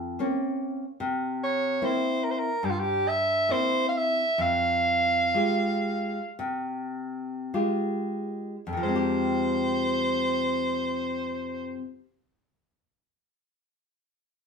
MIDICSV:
0, 0, Header, 1, 3, 480
1, 0, Start_track
1, 0, Key_signature, -4, "minor"
1, 0, Tempo, 806452
1, 597, Time_signature, 4, 2, 24, 8
1, 1079, Tempo, 852273
1, 2039, Tempo, 921659
1, 2999, Tempo, 1034483
1, 3479, Tempo, 1153846
1, 3959, Tempo, 1268499
1, 6575, End_track
2, 0, Start_track
2, 0, Title_t, "Soprano saxophone"
2, 0, Program_c, 0, 64
2, 853, Note_on_c, 0, 73, 84
2, 1097, Note_on_c, 0, 72, 86
2, 1106, Note_off_c, 0, 73, 0
2, 1319, Note_on_c, 0, 70, 78
2, 1328, Note_off_c, 0, 72, 0
2, 1359, Note_on_c, 0, 72, 67
2, 1368, Note_off_c, 0, 70, 0
2, 1402, Note_on_c, 0, 70, 83
2, 1410, Note_off_c, 0, 72, 0
2, 1548, Note_on_c, 0, 67, 86
2, 1557, Note_off_c, 0, 70, 0
2, 1581, Note_on_c, 0, 65, 69
2, 1589, Note_off_c, 0, 67, 0
2, 1633, Note_on_c, 0, 67, 90
2, 1641, Note_off_c, 0, 65, 0
2, 1793, Note_on_c, 0, 76, 93
2, 1802, Note_off_c, 0, 67, 0
2, 2039, Note_on_c, 0, 72, 93
2, 2046, Note_off_c, 0, 76, 0
2, 2227, Note_off_c, 0, 72, 0
2, 2230, Note_on_c, 0, 77, 70
2, 2278, Note_on_c, 0, 76, 99
2, 2286, Note_off_c, 0, 77, 0
2, 2508, Note_on_c, 0, 77, 102
2, 2515, Note_off_c, 0, 76, 0
2, 3479, Note_off_c, 0, 77, 0
2, 4444, Note_on_c, 0, 72, 84
2, 5616, Note_off_c, 0, 72, 0
2, 6575, End_track
3, 0, Start_track
3, 0, Title_t, "Nylon-string guitar"
3, 0, Program_c, 1, 24
3, 0, Note_on_c, 1, 41, 66
3, 104, Note_off_c, 1, 41, 0
3, 114, Note_on_c, 1, 58, 50
3, 117, Note_on_c, 1, 60, 49
3, 120, Note_on_c, 1, 61, 56
3, 499, Note_off_c, 1, 58, 0
3, 499, Note_off_c, 1, 60, 0
3, 502, Note_off_c, 1, 61, 0
3, 595, Note_on_c, 1, 48, 68
3, 1064, Note_off_c, 1, 48, 0
3, 1082, Note_on_c, 1, 58, 50
3, 1082, Note_on_c, 1, 60, 49
3, 1085, Note_on_c, 1, 64, 59
3, 1457, Note_off_c, 1, 60, 0
3, 1458, Note_off_c, 1, 58, 0
3, 1459, Note_off_c, 1, 64, 0
3, 1539, Note_on_c, 1, 43, 65
3, 2019, Note_off_c, 1, 43, 0
3, 2023, Note_on_c, 1, 58, 51
3, 2027, Note_on_c, 1, 60, 45
3, 2033, Note_on_c, 1, 64, 53
3, 2405, Note_off_c, 1, 58, 0
3, 2407, Note_off_c, 1, 60, 0
3, 2410, Note_off_c, 1, 64, 0
3, 2489, Note_on_c, 1, 41, 67
3, 2975, Note_off_c, 1, 41, 0
3, 2990, Note_on_c, 1, 56, 51
3, 2993, Note_on_c, 1, 65, 41
3, 3000, Note_on_c, 1, 67, 53
3, 3378, Note_off_c, 1, 56, 0
3, 3380, Note_off_c, 1, 65, 0
3, 3383, Note_off_c, 1, 67, 0
3, 3476, Note_on_c, 1, 48, 66
3, 3943, Note_off_c, 1, 48, 0
3, 3955, Note_on_c, 1, 56, 45
3, 3955, Note_on_c, 1, 65, 44
3, 3957, Note_on_c, 1, 67, 52
3, 4339, Note_off_c, 1, 56, 0
3, 4339, Note_off_c, 1, 65, 0
3, 4339, Note_off_c, 1, 67, 0
3, 4382, Note_on_c, 1, 41, 52
3, 4404, Note_on_c, 1, 48, 47
3, 4421, Note_on_c, 1, 53, 48
3, 4445, Note_on_c, 1, 56, 46
3, 4464, Note_on_c, 1, 60, 46
3, 4491, Note_on_c, 1, 67, 55
3, 5554, Note_off_c, 1, 41, 0
3, 5576, Note_off_c, 1, 48, 0
3, 5593, Note_off_c, 1, 53, 0
3, 5617, Note_off_c, 1, 56, 0
3, 5636, Note_off_c, 1, 60, 0
3, 5663, Note_off_c, 1, 67, 0
3, 6575, End_track
0, 0, End_of_file